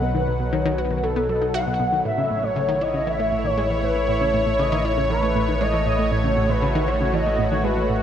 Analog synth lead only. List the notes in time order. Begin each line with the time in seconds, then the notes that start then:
0.02 B4
0.52 C#5
0.78 B4
1.03 A4
1.29 A4
1.55 F#5
2.05 E5
2.43 C#5
2.82 D#5
3.07 E5
3.45 C#5
3.83 B4
4.09 C#5
4.59 D#5
4.85 C#5
5.10 B4
5.61 D#5
5.86 D#5
6.11 C#5
6.50 B4
6.88 C#5
7.13 D#5
7.51 C#5
7.64 B4